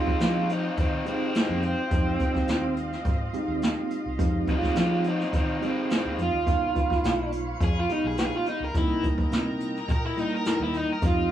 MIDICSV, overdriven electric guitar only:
0, 0, Header, 1, 2, 480
1, 0, Start_track
1, 0, Key_signature, -4, "minor"
1, 0, Tempo, 569260
1, 1615, Time_signature, 4, 2, 24, 8
1, 9541, End_track
2, 0, Start_track
2, 0, Title_t, "Overdriven electric guitar"
2, 0, Program_c, 0, 29
2, 0, Note_on_c, 0, 56, 74
2, 0, Note_on_c, 0, 65, 78
2, 177, Note_off_c, 0, 65, 0
2, 182, Note_off_c, 0, 56, 0
2, 191, Note_on_c, 0, 56, 74
2, 196, Note_on_c, 0, 65, 82
2, 406, Note_off_c, 0, 56, 0
2, 418, Note_off_c, 0, 65, 0
2, 431, Note_on_c, 0, 60, 71
2, 436, Note_on_c, 0, 63, 88
2, 646, Note_off_c, 0, 60, 0
2, 658, Note_off_c, 0, 63, 0
2, 672, Note_on_c, 0, 60, 69
2, 677, Note_on_c, 0, 63, 74
2, 887, Note_off_c, 0, 60, 0
2, 899, Note_off_c, 0, 63, 0
2, 910, Note_on_c, 0, 56, 74
2, 916, Note_on_c, 0, 60, 84
2, 1126, Note_off_c, 0, 56, 0
2, 1138, Note_off_c, 0, 60, 0
2, 1150, Note_on_c, 0, 56, 76
2, 1156, Note_on_c, 0, 60, 84
2, 1366, Note_off_c, 0, 56, 0
2, 1379, Note_off_c, 0, 60, 0
2, 1393, Note_on_c, 0, 60, 91
2, 2316, Note_off_c, 0, 60, 0
2, 3796, Note_on_c, 0, 56, 79
2, 3802, Note_on_c, 0, 65, 90
2, 4022, Note_off_c, 0, 65, 0
2, 4026, Note_off_c, 0, 56, 0
2, 4037, Note_on_c, 0, 56, 77
2, 4042, Note_on_c, 0, 65, 93
2, 4250, Note_off_c, 0, 56, 0
2, 4262, Note_off_c, 0, 65, 0
2, 4279, Note_on_c, 0, 60, 80
2, 4284, Note_on_c, 0, 63, 92
2, 4491, Note_off_c, 0, 60, 0
2, 4503, Note_off_c, 0, 63, 0
2, 4514, Note_on_c, 0, 60, 68
2, 4521, Note_on_c, 0, 63, 82
2, 4729, Note_off_c, 0, 60, 0
2, 4741, Note_off_c, 0, 63, 0
2, 4755, Note_on_c, 0, 56, 80
2, 4764, Note_on_c, 0, 60, 87
2, 4969, Note_off_c, 0, 56, 0
2, 4983, Note_off_c, 0, 60, 0
2, 5001, Note_on_c, 0, 56, 75
2, 5007, Note_on_c, 0, 60, 88
2, 5213, Note_off_c, 0, 56, 0
2, 5225, Note_off_c, 0, 60, 0
2, 5244, Note_on_c, 0, 65, 82
2, 6162, Note_off_c, 0, 65, 0
2, 6441, Note_on_c, 0, 68, 99
2, 6552, Note_off_c, 0, 68, 0
2, 6572, Note_on_c, 0, 65, 83
2, 6678, Note_off_c, 0, 65, 0
2, 6678, Note_on_c, 0, 63, 89
2, 6790, Note_off_c, 0, 63, 0
2, 6806, Note_on_c, 0, 68, 82
2, 6902, Note_off_c, 0, 68, 0
2, 6912, Note_on_c, 0, 68, 103
2, 7027, Note_off_c, 0, 68, 0
2, 7047, Note_on_c, 0, 65, 84
2, 7146, Note_off_c, 0, 65, 0
2, 7156, Note_on_c, 0, 63, 90
2, 7269, Note_off_c, 0, 63, 0
2, 7287, Note_on_c, 0, 70, 95
2, 7386, Note_off_c, 0, 70, 0
2, 7400, Note_on_c, 0, 64, 95
2, 7622, Note_off_c, 0, 64, 0
2, 8360, Note_on_c, 0, 70, 98
2, 8472, Note_off_c, 0, 70, 0
2, 8483, Note_on_c, 0, 64, 85
2, 8584, Note_off_c, 0, 64, 0
2, 8596, Note_on_c, 0, 63, 87
2, 8709, Note_off_c, 0, 63, 0
2, 8729, Note_on_c, 0, 70, 94
2, 8822, Note_off_c, 0, 70, 0
2, 8832, Note_on_c, 0, 70, 108
2, 8947, Note_off_c, 0, 70, 0
2, 8968, Note_on_c, 0, 64, 87
2, 9067, Note_off_c, 0, 64, 0
2, 9081, Note_on_c, 0, 63, 84
2, 9192, Note_off_c, 0, 63, 0
2, 9210, Note_on_c, 0, 70, 87
2, 9307, Note_off_c, 0, 70, 0
2, 9322, Note_on_c, 0, 65, 97
2, 9541, Note_off_c, 0, 65, 0
2, 9541, End_track
0, 0, End_of_file